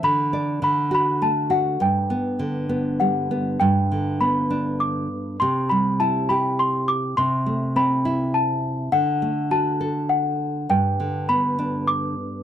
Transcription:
<<
  \new Staff \with { instrumentName = "Celesta" } { \time 3/4 \key g \major \tempo 4 = 102 b''4 b''8 b''8 a''8 fis''8 | g''2 fis''4 | g''4 b''4 d'''4 | c'''8 b''8 a''8 b''8 c'''8 d'''8 |
c'''4 b''4 a''4 | fis''4 a''4 fis''4 | g''4 b''4 d'''4 | }
  \new Staff \with { instrumentName = "Nylon-string guitar" } { \time 3/4 \key g \major d8 d''8 d8 fis'8 a8 fis'8 | g,8 b8 d8 b8 g8 b8 | g,8 d8 b8 d'4. | c8 g8 e'8 g'4. |
c8 a8 c'8 e'4. | d8 a8 fis'8 a'4. | g,8 d8 b8 d'4. | }
>>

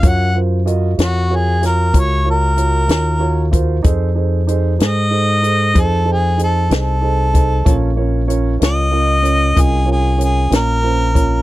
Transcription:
<<
  \new Staff \with { instrumentName = "Harmonica" } { \time 12/8 \key ges \lydian \tempo 4. = 63 ges''8 r4 ges'8 aes'8 bes'8 des''8 bes'2 r8 | r4. ees''4. a'8 gis'8 a'8 a'4.~ | a'8 r4 ees''4. aes'8 aes'8 aes'8 bes'4. | }
  \new Staff \with { instrumentName = "Grand piano" } { \time 12/8 \key ges \lydian <f' ges' bes' des''>8 <f' ges' bes' c''>8 <f' ges' bes' ees''>8 <f' ges' bes' des''>8 <f' ges' bes' des''>8 <f' ges' bes' des''>8 <f' ges' bes' des''>8 <f' ges' bes' des''>8 <f' ges' bes' des''>8 <f' ges' bes' des''>8 <f' ges' bes' des''>8 <f' ges' bes' c''>8 | <ees' gis' a' c''>8 <ees' gis' a' c''>8 <ees' gis' a' c''>8 <ees' gis' a' c''>8 <ees' gis' a' c''>8 <ees' gis' a' c''>8 <ees' gis' a' c''>8 <ees' gis' a' c''>8 <ees' gis' a' c''>8 <ees' gis' a' c''>8 <ees' gis' a' c''>8 <ees' gis' a' c''>8 | <des' f' bes' des''>8 <des' f' bes' des''>8 <des' f' bes' des''>8 <des' f' bes' des''>8 <des' f' bes' ees''>8 <des' f' bes' des''>8 <des' f' bes' ees''>8 <des' f' bes' des''>8 <des' f' bes' des''>8 <des' f' bes' des''>8 <des' f' bes' c''>8 <des' f' bes' des''>8 | }
  \new Staff \with { instrumentName = "Fingered electric bass" } { \clef bass \time 12/8 \key ges \lydian ges,4. f,4. des,4. ees,4. | f,4. gis,4. f,4. c,4. | bes,,4. des,4. c,4. bes,,4. | }
  \new DrumStaff \with { instrumentName = "Drums" } \drummode { \time 12/8 <hh bd>4 hh8 <hh sn>4 <hh sn>8 <hh bd>4 hh8 <hh sn>4 <hh bd>8 | <hh bd>4 hh8 <hh sn>4 hh8 <hh bd>4 hh8 <hh sn>4 <hh bd>8 | <hh bd>4 hh8 <hh sn>4 hh8 <hh bd>4 hh8 <hh sn>4 <hh bd>8 | }
>>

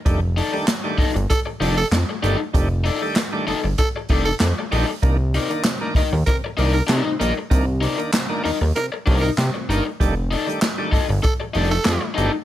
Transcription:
<<
  \new Staff \with { instrumentName = "Overdriven electric guitar" } { \time 4/4 \key f \mixolydian \tempo 4 = 97 r8 <ees' a' d''>8 r8 <ees' a' ees''>8 r8 <ees' a' d''>8 r8 <ees' a' ees''>8 | r8 <ees' a' d''>8 r8 <ees' a' ees''>8 r8 <ees' a' d''>8 r8 <ees' a' ees''>8 | r8 <ees' bes' d''>8 r8 <ees' bes' ees''>8 r8 <ees' bes' d''>8 <ees' bes' d''>8 <ees' bes' ees''>8 | r8 <ees' bes' d''>8 r8 <ees' bes' ees''>8 r8 <ees' bes' d''>8 r8 <ees' bes' ees''>8 |
r8 <ees' a' d''>8 r8 <ees' a' ees''>8 r8 <ees' a' d''>8 r8 <ees' a' ees''>8 | }
  \new Staff \with { instrumentName = "Tenor saxophone" } { \time 4/4 \key f \mixolydian r2 a'16 r8 a'16 r4 | r2 a'16 r8 a'16 r4 | r2 bes'16 r8 bes'16 r4 | r2 bes'16 r8 bes'16 r4 |
r2 a'16 r8 a'8. r8 | }
  \new Staff \with { instrumentName = "Tonewheel organ" } { \time 4/4 \key f \mixolydian <ees g a d'>16 r8 <ees g a d'>16 r16 <ees g a d'>16 <a d'>16 r8. <ees g a d'>16 <a d'>16 <a d'>16 r16 <ees g a d'>16 r16 | <ees g a d'>16 r8 <ees g a d'>16 r16 <ees g a d'>16 <a d'>16 r8. <ees g a d'>16 <a d'>16 <a d'>16 r16 <ees g a d'>16 r16 | <ees bes d'>16 r16 c16 <ees bes d'>16 c16 <ees bes d'>16 <bes d'>16 r16 c16 r16 <ees bes d'>16 <bes d'>16 <bes d'>16 c16 <ees bes d'>16 r16 | <ees bes d'>16 r16 c16 <ees bes d'>16 c16 <ees bes d'>16 <bes d'>16 r16 c16 r16 <ees bes d'>16 <bes d'>16 <bes d'>16 c16 <ees bes d'>16 r16 |
<ees g a d'>16 r8 <ees g a d'>16 r16 <ees g a d'>16 <a d'>16 r8. <ees g a d'>16 <a d'>16 <a d'>16 r16 <ees g a d'>16 r16 | }
  \new Staff \with { instrumentName = "Analog synth bass" } { \clef bass \time 4/4 \key f \mixolydian f,,8. r8. g,,16 g,,16 r8 f,,8 f,16 r16 g,,16 r16 | f,,8. r8. g,,16 g,,16 r8 f,,8 f,16 r16 bes,,16 r16 | c,8. r8. ees,16 ees,16 r8 c,8 c16 r16 bes,,16 r16 | c,8. r8. ees,16 ees,16 r8 c,8 c16 r16 g,,16 r16 |
f,,8. r8. g,,16 g,,16 r8 f,,8 f,16 r16 g,,16 r16 | }
  \new DrumStaff \with { instrumentName = "Drums" } \drummode { \time 4/4 <hh bd>8 hho8 <hc hh sn>8 <hho bd>16 hh16 <hh bd>8 hho8 <hc hh sn>8 hh8 | <hh bd>8 hho8 <hc hh sn>8 hho8 <hh bd>8 <hho bd>8 <hc hh sn>8 hho8 | <hh bd>8 hho16 hh16 <hc hh sn>8 <hho bd>8 <hh bd>8 hho8 <hc hh sn>8 hh8 | <hh bd>8 hho16 hh16 <hc hh sn>8 hho8 hh8 <hho bd>8 <hc hh sn>8 hh8 |
<hh bd>8 hho16 hh16 <hc hh sn>8 <hho bd>8 <hh bd>8 hho8 <hc hh sn>8 hh8 | }
>>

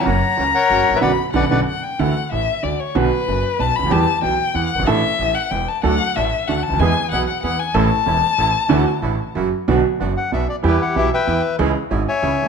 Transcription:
<<
  \new Staff \with { instrumentName = "Violin" } { \time 3/4 \key b \minor \tempo 4 = 188 ais''2. | b''4 fis''4 fis''8 g''8 | \key d \major fis''4 e''4 d''8 cis''8 | b'2 a''8 b''8 |
a''4 g''4 fis''4 | e''4. fis''8 g''8 a''8 | fis''4 e''4 fis''8 a''8 | gis''4 fis''8 fis''8 fis''8 gis''8 |
a''2.~ | a''2 r4 | \key e \dorian r2. | r2. |
r2. | }
  \new Staff \with { instrumentName = "Bandoneon" } { \time 3/4 \key b \minor << { r4. fis''4~ fis''16 e''16 | <b' d'' fis''>8 r8 <b' d'' fis''>8 <b' d'' fis''>8 r4 | \key d \major r2. | r2. |
r2. | r2. | r2. | r2. |
r2. | r2. | \key e \dorian r4. fis''8 e''8 d''8 | b'8 fis''8 e''8 g''4 r8 |
r4. gis''4. | } \\ { <cis'' fis''>4~ <cis'' fis''>16 r16 <ais' cis''>4~ <ais' cis''>16 b'16 | r2. | r2. | r2. |
r2. | r2. | r2. | r2. |
r2. | r2. | r2. | <e' g'>4. <b' e''>4. |
r4. <cis'' e''>4. | } >> }
  \new Staff \with { instrumentName = "Bandoneon" } { \time 3/4 \key b \minor <ais cis' fis'>8 r8 <ais cis' fis'>8 r8 <ais cis' fis'>8 r8 | <b d' fis'>8 r8 <b d' fis'>8 <b d' fis'>8 r4 | \key d \major r2. | r2. |
r2. | r2. | <a d' fis'>8 r8 <a d' fis'>8 r8 <a d' fis'>8 r8 | <b e' gis'>8 r8 <b e' gis'>8 r8 <b e' gis'>8 r8 |
<cis' e' a'>8 r8 <cis' e' a'>8 r8 <cis' e' a'>8 r8 | <d' e' fis'>8 r8 <d' e' fis'>8 r8 <ais e' fis'>8 r8 | \key e \dorian <b d' fis'>8 r8 <b d' fis'>8 r8 <b d' fis'>8 r8 | <b e' g'>8 r8 <b e' g'>8 r8 <b e' g'>8 r8 |
<cis' e' gis'>8 r8 <cis' e' gis'>8 r8 <cis' e' gis'>8 r8 | }
  \new Staff \with { instrumentName = "Upright piano" } { \clef bass \time 3/4 \key b \minor <fis, cis fis ais fis'>8 r8 <cis, cis>8 r8 <fis, fis>8 r32 gis,,32 a,,32 ais,,32 | <fis, b, d>8 r8 <fis, b, d>8 <fis, b, d>8 r4 | \key d \major <d, d e a e'>8 r8 <a,, a,>8 r8 <d, d>8 r8 | <b,, b, d fis b fis'>8 r8 <fis,, fis,>8 r8 <b,, b,>8 r32 cis,32 d,32 ees,32 |
<e, e g b g'>8 r8 <b,, b,>8 r8 <e, e>8 r32 fis,,32 g,,32 gis,,32 | <a,, a, e a d' a'>8 r8 <a,, a,>8 r8 <e,, e,>8 r8 | <d, d fis a d' a'>8 r8 <a,, a,>8 r8 <d, d>8 r32 cis,32 d,32 ees,32 | <e, e gis b gis'>8 r8 <b,, b,>8 r8 <e, e>8 r8 |
<a,, a, e a cis' a'>8 r8 <e,, e,>8 r8 <a,, a,>8 r8 | <d, d e a d' fis'>8 r8 <a,, a,>8 r8 <fis, fis>8 r8 | \key e \dorian <b,, b, d fis b fis'>8 r8 <fis,, fis,>8 r8 <b,, b,>8 r8 | <e, e g b g'>8 r8 <b,, b,>8 r8 <e, e>8 r8 |
<cis, cis e gis cis' gis'>8 r8 <gis,, gis,>8 r8 <cis, cis>8 r32 dis,32 r16 | }
  \new Staff \with { instrumentName = "Upright bass" } { \clef bass \time 3/4 \key b \minor fis,,16. r8 r32 cis,16. r8 r32 fis,,16. r16 gis,,32 a,,32 ais,,32 | b,,16. r8 r32 b,,16. r32 b,,16. r4 r32 | \key d \major d,16. r8 r32 a,,16. r8 r32 d,16. r8 r32 | b,,16. r8 r32 fis,,16. r8 r32 b,,16. r16 cis,32 d,32 ees,32 |
e,16. r8 r32 b,,16. r8 r32 e,16. r16 fis,,32 g,,32 gis,,32 | a,,16. r8 r32 a,,16. r8 r32 e,,16. r8 r32 | d,16. r8 r32 a,,16. r8 r32 d,16. r16 cis,32 d,32 ees,32 | e,16. r8 r32 b,,16. r8 r32 e,16. r8 r32 |
a,,16. r8 r32 e,,16. r8 r32 a,,16. r8 r32 | d,16. r8 r32 a,,16. r8 r32 fis,,16. r8 r32 | \key e \dorian b,,16. r8 r32 fis,,16. r8 r32 b,,16. r8 r32 | e,16. r8 r32 b,,16. r8 r32 e,16. r8 r32 |
cis,16. r8 r32 gis,,16. r8 r32 cis,16. r8 r32 | }
>>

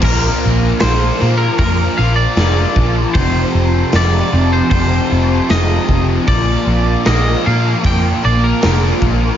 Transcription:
<<
  \new Staff \with { instrumentName = "Clean electric guitar" } { \time 4/4 \key bes \major \tempo 4 = 77 bes'4 c''8. bes'16 bes'8 f''16 d''4~ d''16 | c''4 d''8. c''16 c''4 ees''8. r16 | d''4 ees''8 f''8 g''8 d''16 bes'4~ bes'16 | }
  \new Staff \with { instrumentName = "Distorted electric guitar" } { \clef bass \time 4/4 \key bes \major <bes, f bes>4 <bes, f bes>8 <f bes>8 <bes, f bes>8 <f bes>8 <bes, f bes>4 | <f, c f>4 <f, c f>8 <c f>8 <f, c f>8 <c f>8 <f, c f>4 | <bes, f bes>4 <bes, f bes>8 <f bes>8 <bes, f bes>8 <f bes>8 <bes, f bes>4 | }
  \new Staff \with { instrumentName = "Picked electric bass" } { \clef bass \time 4/4 \key bes \major bes,,8 bes,,8 bes,,8 bes,8 f,8 bes,,8 f,,8 bes,,8 | f,,8 f,,8 f,,8 f,,8 f,,8 f,,8 f,,8 f,,8 | bes,,8 bes,,8 bes,,8 bes,8 f,8 bes,,8 f,,8 bes,,8 | }
  \new DrumStaff \with { instrumentName = "Drums" } \drummode { \time 4/4 <cymc bd>4 <hho sn>8 sn8 <hho bd>4 <hho sn>8 bd8 | <hho bd>4 <hho sn>4 <hho bd>4 <hho sn>8 bd8 | <hho bd>4 <hho sn>4 <hho bd>4 <hho sn>8 bd8 | }
>>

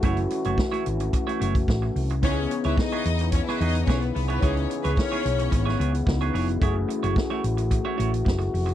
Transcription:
<<
  \new Staff \with { instrumentName = "String section" } { \time 4/4 \key cis \minor \tempo 4 = 109 r1 | <cis' cis''>8 r16 <e' e''>16 <dis' dis''>4 <cis' cis''>16 <e' e''>16 <dis' dis''>8 <cis' cis''>16 <b b'>16 <b b'>16 <b b'>16 | <cis' cis''>8 r16 <b b'>16 <cis' cis''>4. r4. | r1 | }
  \new Staff \with { instrumentName = "Clean electric guitar" } { \time 4/4 \key cis \minor <a e' fis' cis''>16 r8 <a e' fis' cis''>16 r16 <a e' fis' cis''>16 r8. <a e' fis' cis''>16 <a e' fis' cis''>16 r4 r16 | <b e' gis' cis''>16 r8 <b e' gis' cis''>16 r16 <b e' gis' cis''>16 r8. <b e' gis' cis''>16 <b e' gis' cis''>16 r16 <b e' gis' cis''>16 r8 <b e' gis' cis''>16 | <b e' gis' cis''>16 r8 <b e' gis' cis''>16 r16 <b e' gis' cis''>16 r8. <b e' gis' cis''>16 <b e' gis' cis''>16 r8 <b e' gis' cis''>16 <b e' gis' cis''>16 r16 | <a e' fis' cis''>16 r8 <a e' fis' cis''>16 r16 <a e' fis' cis''>16 r8. <a e' fis' cis''>16 <a e' fis' cis''>16 r4 r16 | }
  \new Staff \with { instrumentName = "Tine electric piano" } { \time 4/4 \key cis \minor <a cis' e' fis'>1 | <b dis' e' g' gis'>1 | <b dis' e' gis'>2. <b dis' e' fis'>4 | <a cis' e' gis'>1 | }
  \new Staff \with { instrumentName = "French horn section" } { \time 4/4 \key cis \minor <e a fis'>1 | <cis e b>1~ | <cis e b>1 | <e a fis'>1 | }
  \new Staff \with { instrumentName = "Fingered electric bass" } { \clef bass \time 4/4 \key cis \minor fis,,8 r16 fis,,16 r8 gis,,8 r8 fis,,8 a,,8 bis,,8 | cis,8 r16 cis,16 r8 e,8. r16 e,8 b,,8 bis,,8 | cis,8 r16 cis,16 r8 b,,8 gis,,8 cis,8 cis,8 eis,,8 | fis,,8 r16 fis,,16 r8 a,,8. r16 a,,8 fis,,8 eis,,8 | }
  \new DrumStaff \with { instrumentName = "Drums" } \drummode { \time 4/4 <hh bd>16 hh16 hh16 hh16 <bd sn>16 hh16 hh16 hh16 <hh bd>16 hh16 hh16 <hh bd>16 <bd sn>8 hho16 hh16 | <hh bd>8 hh16 hh16 <bd sn>8 hh16 hh16 <hh bd>16 sn16 hh16 hh16 <bd sn>16 hh16 hho16 hh16 | <hh bd>16 hh16 hh16 hh16 <bd sn>16 hh16 hh16 hh16 <hh bd>16 sn16 hh16 hh16 <bd sn>16 hh16 hho16 hh16 | <hh bd>8 hh16 hh16 <bd sn>8 hh16 hh16 <hh bd>8 hh16 hh16 <bd sn>16 hh16 hho16 hh16 | }
>>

